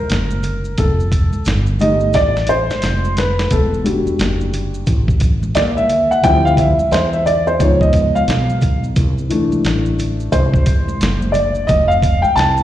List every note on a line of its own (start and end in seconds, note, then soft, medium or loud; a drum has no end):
0.00 0.81 A#4 medium
0.10 0.75 F#1 medium
0.10 snare loud
0.10 closed hi-hat medium
0.10 maracas medium
0.31 high conga medium
0.31 maracas soft
0.43 closed hi-hat medium
0.43 low conga medium
0.43 maracas medium
0.65 maracas soft
0.78 1.31 F1 loud
0.78 1.42 A4 medium
0.78 kick loud
0.78 closed hi-hat loud
0.78 maracas medium
1.00 maracas soft
1.12 kick medium
1.12 closed hi-hat medium
1.12 high conga soft
1.12 low conga medium
1.12 maracas soft
1.33 muted fretless electric bass stroke soft
1.33 high conga medium
1.33 maracas soft
1.45 2.11 G1 medium
1.45 snare loud
1.45 closed hi-hat medium
1.45 maracas medium
1.66 maracas soft
1.79 2.29 G3 medium
1.79 2.29 A3 soft
1.79 2.30 D#4 medium
1.79 2.16 D#5 loud
1.79 closed hi-hat medium
1.79 low conga soft
1.79 maracas soft
2.00 maracas soft
2.13 2.67 A1 medium
2.13 2.50 D5 loud
2.13 kick medium
2.13 snare medium
2.13 closed hi-hat medium
2.13 maracas medium
2.36 snare soft
2.36 maracas soft
2.47 3.13 C5 medium
2.47 closed hi-hat medium
2.47 maracas soft
2.70 muted fretless electric bass stroke soft
2.70 snare medium
2.70 high conga medium
2.70 maracas soft
2.82 3.48 F1 medium
2.82 snare medium
2.82 closed hi-hat medium
2.82 maracas medium
3.04 high conga medium
3.04 maracas soft
3.17 3.53 B4 medium
3.17 snare loud
3.17 closed hi-hat medium
3.17 low conga medium
3.17 maracas medium
3.39 snare medium
3.39 maracas soft
3.51 4.03 E1 loud
3.51 3.83 A4 medium
3.51 kick loud
3.51 closed hi-hat loud
3.51 maracas medium
3.74 maracas soft
3.84 4.83 G3 medium
3.84 4.83 D4 soft
3.84 4.84 F#4 medium
3.84 closed hi-hat medium
3.84 high conga soft
3.84 low conga medium
3.84 maracas soft
4.06 muted fretless electric bass stroke soft
4.06 high conga medium
4.06 maracas soft
4.19 4.84 F#1 medium
4.19 snare loud
4.19 closed hi-hat medium
4.19 maracas medium
4.41 maracas soft
4.53 closed hi-hat medium
4.53 low conga soft
4.53 maracas soft
4.74 maracas soft
4.87 5.52 A1 loud
4.87 kick loud
4.87 closed hi-hat medium
4.87 maracas medium
5.08 kick medium
5.08 maracas soft
5.20 kick medium
5.20 closed hi-hat medium
5.20 maracas soft
5.43 high conga medium
5.43 maracas soft
5.55 6.21 D#2 medium
5.55 5.60 D5 medium
5.55 snare loud
5.55 closed hi-hat medium
5.55 maracas medium
5.77 6.12 E5 medium
5.77 high conga medium
5.77 maracas soft
5.89 closed hi-hat medium
5.89 low conga medium
5.89 maracas medium
6.11 6.24 F#5 medium
6.11 maracas soft
6.23 6.76 D2 loud
6.23 6.72 F3 medium
6.23 6.72 G3 soft
6.23 6.72 C4 medium
6.23 6.72 E4 medium
6.23 6.45 G5 loud
6.23 kick loud
6.23 closed hi-hat medium
6.23 maracas medium
6.45 6.58 F5 medium
6.45 maracas soft
6.57 6.93 E5 medium
6.57 kick loud
6.57 closed hi-hat medium
6.57 high conga soft
6.57 low conga medium
6.57 maracas soft
6.78 muted fretless electric bass stroke soft
6.78 high conga medium
6.78 maracas soft
6.91 7.57 E2 medium
6.91 7.14 C5 medium
6.91 snare loud
6.91 closed hi-hat medium
6.91 maracas medium
7.13 7.27 E5 medium
7.13 maracas soft
7.26 7.48 D5 medium
7.26 closed hi-hat medium
7.26 low conga medium
7.26 maracas soft
7.47 7.61 C5 medium
7.47 maracas soft
7.59 8.25 C#2 loud
7.59 8.92 F3 medium
7.59 8.92 B3 soft
7.59 8.93 D#4 medium
7.59 7.82 C#5 medium
7.59 kick medium
7.59 closed hi-hat medium
7.59 maracas medium
7.81 8.16 D#5 medium
7.81 kick medium
7.81 maracas soft
7.93 kick medium
7.93 closed hi-hat medium
7.93 maracas soft
8.15 8.80 F5 medium
8.15 high conga medium
8.15 maracas medium
8.28 8.93 B1 loud
8.28 snare loud
8.28 closed hi-hat medium
8.28 maracas medium
8.50 high conga medium
8.50 maracas soft
8.61 kick medium
8.61 closed hi-hat medium
8.61 low conga medium
8.61 maracas medium
8.84 maracas soft
8.96 9.49 C2 medium
8.96 kick loud
8.96 closed hi-hat loud
8.96 maracas medium
9.18 maracas soft
9.29 11.65 E3 medium
9.29 11.65 A3 medium
9.29 11.65 D4 medium
9.29 closed hi-hat medium
9.29 high conga soft
9.29 low conga medium
9.29 maracas soft
9.52 muted fretless electric bass stroke soft
9.52 high conga medium
9.52 maracas soft
9.64 10.30 A1 medium
9.64 snare loud
9.64 closed hi-hat medium
9.64 maracas medium
9.86 maracas soft
9.99 closed hi-hat medium
9.99 low conga soft
9.99 maracas soft
10.20 maracas soft
10.32 10.97 C2 loud
10.32 11.31 C5 medium
10.32 kick medium
10.32 closed hi-hat loud
10.32 maracas medium
10.54 kick loud
10.54 maracas soft
10.66 kick loud
10.66 closed hi-hat medium
10.66 maracas soft
10.89 high conga medium
10.89 maracas soft
11.01 11.66 F#1 loud
11.01 snare loud
11.01 closed hi-hat medium
11.01 maracas medium
11.22 high conga medium
11.22 maracas soft
11.32 11.69 D5 medium
11.32 closed hi-hat medium
11.32 low conga medium
11.32 maracas medium
11.55 maracas soft
11.67 12.21 F1 loud
11.67 11.90 D#5 loud
11.67 kick loud
11.67 closed hi-hat loud
11.67 maracas medium
11.88 12.24 F5 loud
11.88 maracas soft
12.02 kick medium
12.02 closed hi-hat medium
12.02 high conga soft
12.02 low conga medium
12.02 maracas soft
12.22 12.37 G5 medium
12.22 muted fretless electric bass stroke soft
12.22 high conga medium
12.22 maracas soft
12.36 12.63 C2 medium
12.36 12.63 A5 loud
12.36 snare loud
12.36 closed hi-hat medium
12.36 maracas medium
12.57 maracas soft